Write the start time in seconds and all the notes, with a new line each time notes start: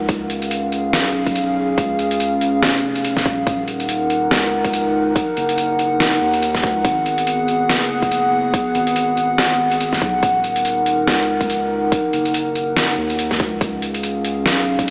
0.09 C#2 C#4 G#4 F5, kick, closed hi-hat
0.30 closed hi-hat
0.42 closed hi-hat
0.51 closed hi-hat
0.72 closed hi-hat
0.93 B1, snare, closed hi-hat
1.27 kick, closed hi-hat
1.36 closed hi-hat
1.78 C#2, kick, closed hi-hat
1.99 closed hi-hat
2.11 closed hi-hat
2.20 closed hi-hat
2.41 closed hi-hat
2.62 F1, snare, closed hi-hat
2.96 closed hi-hat
3.05 closed hi-hat
3.17 kick, snare
3.21 E1
3.26 kick
3.47 D#1 D#4 A#4 F#5, kick, closed hi-hat
3.68 closed hi-hat
3.80 closed hi-hat
3.89 closed hi-hat
4.10 closed hi-hat
4.31 C#2, snare, closed hi-hat
4.64 kick, closed hi-hat
4.73 closed hi-hat
5.16 kick, closed hi-hat
5.37 F#1, closed hi-hat
5.49 closed hi-hat
5.58 closed hi-hat
5.79 closed hi-hat
6.00 snare, closed hi-hat
6.21 D#2
6.34 closed hi-hat
6.42 closed hi-hat
6.55 kick, snare
6.64 D2, kick
6.84 G#1 B3 G#4, kick, closed hi-hat
7.06 closed hi-hat
7.18 closed hi-hat
7.27 closed hi-hat
7.48 closed hi-hat
7.69 F#1, snare, closed hi-hat
8.02 kick, closed hi-hat
8.11 closed hi-hat
8.54 kick, closed hi-hat
8.75 G#1, closed hi-hat
8.87 closed hi-hat
8.96 closed hi-hat
9.17 closed hi-hat
9.38 snare, closed hi-hat
9.71 closed hi-hat
9.80 closed hi-hat
9.93 kick, snare
10.02 B1, kick
10.23 D#1 D#4 A#4, kick, closed hi-hat
10.44 closed hi-hat
10.56 closed hi-hat
10.65 closed hi-hat
10.86 closed hi-hat
11.07 C#2, snare, closed hi-hat
11.41 kick, closed hi-hat
11.50 closed hi-hat
11.92 kick, closed hi-hat
12.13 F#1, closed hi-hat
12.25 closed hi-hat
12.34 closed hi-hat
12.55 closed hi-hat
12.77 snare, closed hi-hat
12.98 D#2
13.10 closed hi-hat
13.19 closed hi-hat
13.31 kick, snare
13.40 D2, kick
13.61 C#2 C#4 G#4 F5, kick, closed hi-hat
13.82 closed hi-hat
13.94 closed hi-hat
14.03 closed hi-hat
14.25 closed hi-hat
14.45 B1, snare, closed hi-hat
14.79 kick, closed hi-hat